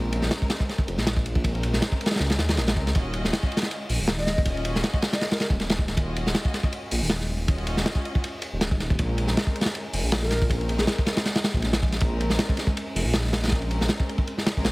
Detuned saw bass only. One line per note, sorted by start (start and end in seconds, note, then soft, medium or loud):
0.00 0.21 A#1 loud
0.23 0.30 A#1 medium
0.87 0.97 F1 loud
0.98 1.72 A#1 medium
1.73 1.81 A#1 medium
2.20 2.37 C#2 medium
2.39 2.59 D#2 medium
2.57 2.78 A#1 loud
2.76 2.93 C#2 loud
2.95 3.23 D#1 loud
3.24 3.32 D#1 medium
3.89 3.99 A#1 medium
4.00 4.74 D#1 medium
4.75 4.83 D#1 medium
5.50 5.95 D#1 medium
5.97 6.25 D#1 loud
6.26 6.34 D#1 medium
6.92 7.01 A#1 medium
7.02 7.76 D#1 medium
7.77 7.85 D#1 medium
8.53 8.98 D#1 medium
8.99 9.27 A#1 medium
9.28 9.36 A#1 medium
9.93 10.02 F1 medium
10.03 10.77 A#1 medium
10.79 10.87 A#1 medium
11.54 11.99 A#1 medium
12.02 12.29 A#1 loud
12.30 12.38 A#1 medium
12.95 13.04 F1 medium
13.05 13.79 A#1 medium
13.81 13.89 A#1 medium
14.57 14.72 A#1 medium